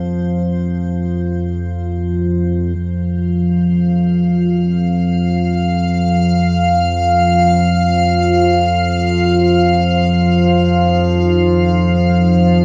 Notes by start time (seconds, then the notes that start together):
Already playing: F2 F3 C5
2.75 F2 F3 F5
10.79 D#4
11.76 F4